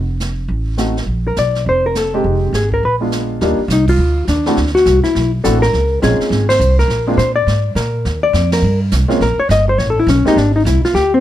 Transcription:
Already playing: F1
0.20 snare, hi-hat pedal
0.48 A1, brush sweep
0.77 A3 C4 D#4 F#4, snare, hi-hat pedal
0.97 snare
1.06 A#1, brush sweep
1.27 A#4
1.36 B1 D5, snare, hi-hat pedal
1.55 snare
1.66 F1 C5, brush sweep
1.86 A#4
1.95 A4, snare, hi-hat pedal
2.14 G#3 C4 D#4 G4
2.24 F1, brush sweep
2.53 G#1 G#4, snare, hi-hat pedal
2.72 A#4, kick
2.83 A#1 B4, brush sweep
3.01 G#3 B3 D4 F4
3.12 snare, hi-hat pedal
3.41 D#2 G3 A#3 D4 D#4 F4, brush sweep, snare
3.59 muted upright bass stroke
3.68 C2, snare, hi-hat pedal
3.73 D#4
3.88 F4, kick, crash
3.98 D2, brush sweep
4.28 D#2 D4, snare, hi-hat pedal
4.46 A3 C4 D4 E4 F#4, snare
4.57 D2, brush sweep, snare
4.67 snare
4.75 F#4, snare
4.86 C2, snare, hi-hat pedal
5.04 E4, snare
5.15 B1, brush sweep, snare
5.44 A1 A3 C4 D4 E4 F#4 A4, snare, hi-hat pedal
5.62 A#4, snare
5.73 C#2, brush sweep, snare
6.02 A#1 G#3 C4 C#4 D#4 F4 G#4, snare, hi-hat pedal
6.19 muted upright bass stroke, snare
6.30 G#1, brush sweep, snare
6.49 C5, snare, ride
6.60 C2, hi-hat pedal
6.79 A#4, snare
6.88 A#1, brush sweep, snare
7.07 G#3 A#3 C4 D4 F4
7.17 A#2 C5, snare, hi-hat pedal
7.36 D5
7.47 G#2, brush sweep, snare
7.75 A#2 A#4, snare, hi-hat pedal
8.05 D#2, brush sweep, snare
8.23 D5
8.33 F2, snare, hi-hat pedal
8.52 A#4, snare, ride
8.62 G2, brush sweep
8.92 C2, snare, hi-hat pedal
9.08 G#3 A#3 C4 C#4 F4, snare
9.20 A#1 A#4, brush sweep, snare
9.38 C#5, muted upright bass stroke
9.49 G1 D#5, snare, hi-hat pedal
9.69 C5
9.78 A1 C#5, brush sweep, snare
9.90 A4
9.99 E4
10.07 B1 C#4, snare, hi-hat pedal
10.25 G#3 A#3 C4 D#4 G4, muted upright bass stroke, snare
10.36 G#1 D4, brush sweep, snare
10.56 D#4
10.65 C2 E4, snare, hi-hat pedal
10.83 F4, muted upright bass stroke, snare
10.94 D2 G4, brush sweep, snare
11.14 C4

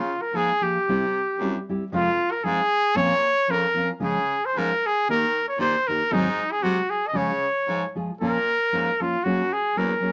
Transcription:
Already playing: C#3 F4
0.22 A#4
0.32 G#2 F3 A#3 F4
0.36 G#4
0.61 F3 A#3 F4 G4 G#4
0.85 C3 G3 E4
0.90 C4 G4
1.37 F#2 G3 C4
1.41 E4 G4
1.69 G3 C4 E4 G4
1.90 F2 C3 F3 G#3 C4 F4
2.32 A#4
2.43 G#2 F3 G#3 C4 F4 G#4
2.95 A#2 F3 C4 C#4 F4 C#5
3.48 F2 F3 C4 C#4 F4 A#4
3.74 F3 C4 C#4 F4
4.00 C#3 F3 G#3 C#4 F4
4.05 G#4
4.45 C5
4.53 G#2 F3 G#3
4.58 C#4 F4 A#4
4.86 G#4
5.06 D#3 D#4
5.10 A#3 G4 A#4
5.48 C#5
5.58 A#2 D#3 A#3 D#4 G4 C5
5.88 D#3 A#3 D#4 G4 A#4
6.09 G#2 D#3 F#3 G#3 C4 D#4 G#4
6.52 G#4
6.61 C3 F#3 G#3 C4 F#4
6.65 G#4
6.90 G#4
7.07 D#5
7.12 C#3 F3 G#3 F4 G#4
7.16 C#5
7.65 G#2 F3 G#3 F4 G#4
7.95 F3 G#3 F4 G#4
8.17 A#2 F3 A#3 A#4
8.22 C#4 F4
8.71 G#2 F3 A#3 C#4 F4
9.00 F3 A#3 C#4 F4
9.23 F#2 F#3 A#3 C#4 F#4 G#4
9.53 G#4
9.75 E2 F#3 A#3 C#4 G#4 A#4
10.00 F#3 A#3 C#4 G#4

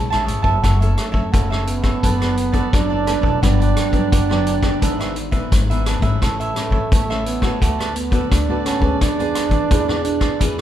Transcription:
Already playing: E3
0.10 A1 G#3 C#4 E4 C#5 E5 A5, cross-stick, closed hi-hat
0.26 G#1 G#4 C#5 E5 A5, closed hi-hat
0.42 F#1 C#5 E5 A5, kick
0.62 F#1 F#3 A3 C#4 E4 F#4 A4 C#5 E5, kick, cross-stick, closed hi-hat
0.80 C#4 E4 A4 C#5 E5, closed hi-hat
0.98 cross-stick, closed hi-hat
1.12 F#2 A4 C#5 E5, kick
1.32 F#1 C#3 C#4 E4 F#4 A4 C#5 E5, kick, closed hi-hat
1.50 A4 C#5 E5, cross-stick
1.67 B3, closed hi-hat
1.82 A4 C#5 E5, kick, cross-stick, closed hi-hat
2.02 F#1 F#3 B3 D4 A4 B4 D5, kick, closed hi-hat
2.20 A4 B4 D5, cross-stick, closed hi-hat
2.36 muted cavaquinho stroke, closed hi-hat
2.52 B3 D4 A4 B4 D5, kick, closed hi-hat
2.73 F#1 F#3 D4, kick, cross-stick, closed hi-hat
2.90 A4 B4 D5
3.06 B3 D4 A4 B4 D5, cross-stick, closed hi-hat
3.21 E1 A4 B4 D5, kick
3.42 G1 G2 F#3 B3 D4 F#4 G4 B4 D5, kick, cross-stick, closed hi-hat
3.60 G4 B4 D5, closed hi-hat
3.77 cross-stick, closed hi-hat
3.91 G2 F#3 B3 D4 G4 B4 D5, kick, closed hi-hat
4.11 F#1 D3 F#4 G4 B4 D5, kick, closed hi-hat
4.29 F#3 B3 D4 G4 B4 D5, cross-stick
4.47 closed hi-hat
4.62 E3 B3 D4 G4 B4 D5, kick, cross-stick, closed hi-hat
4.81 G#1 G#2 D4 G#4 B4 E5, kick, closed hi-hat
5.00 G#4 B4 E5, cross-stick, closed hi-hat
5.16 muted cavaquinho stroke, closed hi-hat
5.31 E3 B3 D4 G#4 B4 E5, kick, closed hi-hat
5.51 G#1 G#2, kick, cross-stick, closed hi-hat
5.70 E3 B3 D4 G#4 B4 E5, closed hi-hat
5.86 D4 G#4 B4 E5, cross-stick, closed hi-hat
6.00 G#1 E3 A3 C#4 B4 E5, kick, closed hi-hat
6.04 G#4
6.21 A1 A2 A3 E4 A4 C#5 E5, kick, cross-stick, closed hi-hat
6.40 A4 C#5 E5, closed hi-hat
6.55 E3 A3 C#4, cross-stick, closed hi-hat
6.70 A2 A4 C#5 E5, kick
6.91 A1 E3 E4 A4 C#5 E5, kick, closed hi-hat
7.10 E3 A3 C#4 A4 C#5 E5, cross-stick
7.26 B3, closed hi-hat
7.42 A3 B3 F#4 A4 C#5 E5, kick, cross-stick, closed hi-hat
7.61 D2 D3 A3 F#4 A4 B4 D5, kick, closed hi-hat
7.79 A4 B4 D5, cross-stick, closed hi-hat
7.95 B3, muted cavaquinho stroke, closed hi-hat
8.11 A3 B3 F#4 A4 B4 D5, kick, closed hi-hat
8.31 D2 A2 D4, kick, cross-stick, closed hi-hat
8.49 A3 B3 F#4 A4 B4 D5
8.65 C#4 F#4 A4 B4 D5, cross-stick, closed hi-hat
8.80 D2 B3 D4 G#4 B4 D5, kick
8.84 A4
9.01 E2 E3 D4 E4 G#4 B4 D5, kick, cross-stick, closed hi-hat
9.19 B3 D4 G#4 B4 D5, closed hi-hat
9.35 cross-stick, closed hi-hat
9.49 E3 B4 D5, kick, closed hi-hat
9.53 G#4
9.70 E2 B2 B3 D4 E4 G#4 B4 D5, kick, closed hi-hat
9.88 B3 D4 G#4 B4 D5, cross-stick
10.04 D4, closed hi-hat
10.20 G#4 B4 D5, kick, cross-stick, closed hi-hat
10.39 E2 E3 B3 D4 E4 G#4 B4 D5, kick, closed hi-hat

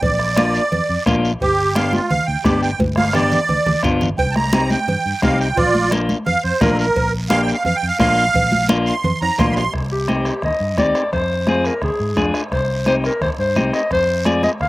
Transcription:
0.02 A#1 D5, bombo low, cowbell, high conga, low conga, long guiro
0.19 bombo rim
0.37 A#3 D4 F4, bombo rim, cowbell, high conga, short guiro
0.55 short guiro
0.72 F2, cowbell, high conga, low conga, long guiro
0.89 F2
1.06 A#1 A#3 D4 F4, bombo low, bombo rim, cowbell, high conga, low timbale, short guiro
1.25 short guiro
1.41 G1 G4, bombo low, cowbell, high conga, long guiro
1.75 B3 D4 G4 F5, bombo rim, cowbell, high conga, short guiro
1.93 F4, high conga, short guiro
2.09 D2 F5, cowbell, high conga, low conga, long guiro
2.26 D2 G5
2.44 G1 B3 D4 G4, bombo low, bombo rim, cowbell, high conga, short guiro
2.62 G5, short guiro
2.79 G1, bombo low, cowbell, high conga, long guiro
2.96 F5, bombo rim, high conga
3.13 B3 D4 G4 D5, bombo rim, cowbell, low conga, short guiro
3.31 low conga, short guiro
3.49 D2, cowbell, low conga, long guiro
3.66 D2, low conga
3.83 G1 B3 D4 F4, bombo low, bombo rim, cowbell, low timbale, short guiro
4.01 low conga, short guiro
4.18 C2 G5, bombo low, cowbell, high conga, long guiro
4.31 A5
4.36 A#5, bombo rim, high conga
4.53 C4 D#4 G4, bombo rim, cowbell, high conga, short guiro
4.70 G5, high conga, short guiro
4.88 G2, cowbell, high conga, low conga, long guiro
5.06 G2
5.22 C2 C4 D#4 G4 F5, bombo low, bombo rim, cowbell, high conga, short guiro
5.41 G5, short guiro
5.56 A#1 F4 D5, bombo low, cowbell, high conga, low conga, long guiro
5.75 high conga
5.91 A#3 D4 F4, bombo rim, cowbell, high conga, short guiro
6.09 high conga, short guiro
6.26 F2 F5, cowbell, high conga, low conga, long guiro
6.44 F2 C5
6.61 A#1 A#3 D4 F4 A#4, bombo low, bombo rim, cowbell, high conga, low conga, low timbale, short guiro
6.75 A4
6.79 A#4, short guiro
6.96 A#1, bombo low, cowbell, high conga, long guiro
7.29 A#3 D4 G4 F5, bombo rim, cowbell, high conga, short guiro
7.42 G5
7.48 short guiro
7.54 F5
7.65 F2 F5, cowbell, high conga, low conga, long guiro
7.76 G5
7.83 F2
7.88 F5
7.99 A#1 A#3 D4 F4 F5, bombo low, bombo rim, cowbell, high conga, low timbale, short guiro
8.17 short guiro
8.34 A#1, bombo low, cowbell, high conga, low conga, long guiro
8.52 high conga
8.69 A#3 D4 F4, bombo rim, cowbell, high conga, short guiro
8.86 C6, short guiro
9.04 F2, cowbell, high conga, low conga, long guiro
9.21 F2 A#5, high timbale
9.38 A#1 A#3 D4 F4 C6, bombo low, bombo rim, cowbell, high conga, low conga, low timbale, short guiro
9.52 B5
9.56 C6, low timbale, short guiro
9.73 C2, bombo low, bombo rim, long guiro
9.92 G4
10.08 C4 D#4 G4, bombo rim, high conga, short guiro
10.25 bombo rim, short guiro
10.42 D#2 D#5, bombo low, bombo rim, long guiro
10.60 G2
10.78 D#2 C4 D#4 G4 D5, bombo low, bombo rim, high conga, short guiro
10.95 bombo rim, short guiro
11.13 F2 C5, bombo low, bombo rim, long guiro
11.47 C4 F4 G#4 C5, bombo rim, high conga, short guiro
11.64 A#4, bombo rim, short guiro
11.82 D2 G#4, bombo low, bombo rim, long guiro
12.00 G#2
12.17 F2 D4 F4 G#4, bombo low, bombo rim, high conga, short guiro
12.34 bombo rim, short guiro
12.52 C2 C5, bombo low, bombo rim, long guiro
12.86 C4 D#4 G4 C5, bombo rim, high conga, short guiro
13.04 A#4, bombo rim, short guiro
13.21 D#2 C5, bombo low, bombo rim, long guiro
13.39 G2 C5
13.56 C2 C4 D#4 G4, bombo rim, high conga, short guiro
13.73 D#5, bombo rim, short guiro
13.91 F2 C5, bombo low, bombo rim, long guiro
14.25 C4 F4 G#4 D5, bombo rim, high conga, short guiro
14.43 D#5, bombo rim, high conga, short guiro
14.60 D2 F5, bombo low, bombo rim, long guiro

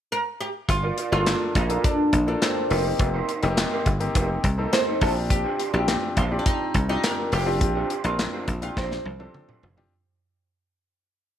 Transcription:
0.12 A#4
0.41 G4
0.68 G1 F4, muted clean electric guitar stroke, kick, closed hi-hat
0.83 F4 A#4 D5
0.97 F4 A#4 D5, closed hi-hat
1.12 G1 A#3 D4 F4 A4, muted clean electric guitar stroke
1.26 muted clean electric guitar stroke, snare, clap, closed hi-hat
1.40 muted clean electric guitar stroke
1.55 A#1 D#4 F4 A#4 D5, kick, closed hi-hat
1.69 A#3 D4 F4 A4 A#4 D5, closed hi-hat
1.84 D4, muted clean electric guitar stroke, kick, closed hi-hat
1.98 muted clean electric guitar stroke
2.13 A#1, kick, closed hi-hat
2.27 A#3 D4 F4 A4, muted clean electric guitar stroke
2.42 C4, snare, clap, closed hi-hat
2.56 muted clean electric guitar stroke
2.70 F1 A#3 C4 D#4 G4 A#4 C5, open hi-hat
2.85 muted clean electric guitar stroke
2.99 F1, kick, closed hi-hat
3.13 D#4 A#4 C5
3.28 D#4 A#4 C5, closed hi-hat
3.42 F1 A#3 C4 D#4 G4, muted clean electric guitar stroke, closed hi-hat
3.57 snare, clap, closed hi-hat
3.71 D#4 A#4 C5
3.86 G1, muted clean electric guitar stroke, kick, closed hi-hat
4.00 A#3 C4 D#4 G4, muted clean electric guitar stroke, closed hi-hat
4.14 F1 D#4 A#4 C5, kick, closed hi-hat
4.29 muted clean electric guitar stroke
4.43 C2, muted clean electric guitar stroke, kick, closed hi-hat
4.57 A#3 C4 D#4 A4 A#4 C5
4.72 C5, muted clean electric guitar stroke, snare, clap, closed hi-hat
4.87 D#4 A#4 C5
5.01 A#1 C4 D4 F4 G4 A4 C5, kick, open hi-hat
5.16 muted clean electric guitar stroke
5.30 G4, muted clean electric guitar stroke, kick, closed hi-hat
5.44 D4 G4 C5
5.58 D4 G4 C5, closed hi-hat
5.73 A#1 C4 D4 F4 G4, muted clean electric guitar stroke
5.87 muted clean electric guitar stroke, snare, clap, closed hi-hat
6.02 muted clean electric guitar stroke
6.16 A#1 D4 F4 G4 C5, kick, closed hi-hat
6.31 C4 D4 F4 G4 C5 D5
6.39 D4
6.45 D#4, muted clean electric guitar stroke, kick, closed hi-hat
6.60 muted clean electric guitar stroke
6.74 C2, kick, closed hi-hat
6.89 C4 D4 D#4 F4 G4, muted clean electric guitar stroke
7.04 A#4, snare, clap, closed hi-hat
7.18 muted clean electric guitar stroke
7.32 F1 D4 G4 C5, open hi-hat
7.46 C4 D4 F4 G4, muted clean electric guitar stroke
7.61 A#1, muted clean electric guitar stroke, kick, closed hi-hat
7.75 D4 G4 C5
7.90 D4 G4 C5, closed hi-hat
8.04 A#1 C4 D4 F4 A#4, muted clean electric guitar stroke, closed hi-hat
8.19 snare, clap, closed hi-hat
8.33 D4 G4 C5
8.47 A#1, muted clean electric guitar stroke, kick, closed hi-hat
8.62 C4 D4 F4 G4, muted clean electric guitar stroke, closed hi-hat
8.76 A#1 C4 D4 G4 C5, kick, snare
8.91 muted clean electric guitar stroke, snare
9.05 C2, muted clean electric guitar stroke, high tom
9.19 C4 D4 F4 G4 A4 C5, high tom
9.34 muted clean electric guitar stroke, mid tom
9.48 D4 G4 C5, mid tom
9.62 F1 D4 G4 C5, floor tom
9.77 C4 D4 F4 G4, muted clean electric guitar stroke, floor tom

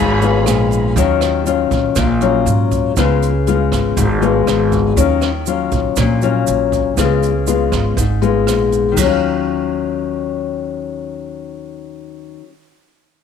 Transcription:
Already playing: G#1 G#2 G#3 B3 F4 G#4 C#5 F5 B5
0.21 G#3 B3 F4, closed hi-hat, shaker
0.46 A#1, cross-stick, closed hi-hat, shaker
0.71 closed hi-hat, shaker
0.96 D#2 D#3 F#3 C#4 F4, kick, closed hi-hat, shaker
1.21 cross-stick, closed hi-hat, shaker
1.46 F#3 C#4 F4, closed hi-hat, shaker
1.71 A#1, kick, closed hi-hat, shaker
1.96 A#1 A#2, kick, cross-stick, closed hi-hat, shaker
2.21 F#3 C#4 F4, closed hi-hat, shaker
2.46 G#2, closed hi-hat, shaker
2.72 kick, closed hi-hat, shaker
2.97 C#2 C#3 G#3 B3 F4, kick, cross-stick, closed hi-hat, shaker
3.22 closed hi-hat, shaker
3.47 G#3 B3 F4, closed hi-hat, shaker
3.72 G#1, kick, cross-stick, closed hi-hat, shaker
3.97 G#1 G#2, kick, closed hi-hat, shaker
4.21 G#3 B3 F4, closed hi-hat, shaker
4.47 G#1, cross-stick, closed hi-hat, shaker
4.72 kick, closed hi-hat, shaker
4.96 D#2 D#3 F#3 C#4 F4, kick, closed hi-hat, shaker
5.21 cross-stick, closed hi-hat, shaker
5.46 F#3 C#4 F4, closed hi-hat, shaker
5.72 A#1, kick, closed hi-hat, shaker
5.96 A#1 A#2, kick, cross-stick, closed hi-hat, shaker
6.22 F#3 C#4 F4, closed hi-hat, shaker
6.47 A#1, closed hi-hat, shaker
6.72 kick, closed hi-hat, shaker
6.97 C#2 C#3 G#3 B3 F4, kick, cross-stick, closed hi-hat, shaker
7.23 closed hi-hat, shaker
7.47 G#3 B3 F4, closed hi-hat, shaker
7.72 G#1, kick, cross-stick, closed hi-hat, shaker
7.97 G#1 G#2, kick, closed hi-hat, shaker
8.21 G#3 B3 F4, closed hi-hat, shaker
8.47 A#1, cross-stick, closed hi-hat, shaker
8.72 closed hi-hat, shaker
8.92 D#3
8.96 D#2 F#3, kick, crash, shaker
9.03 C#4
9.07 F4

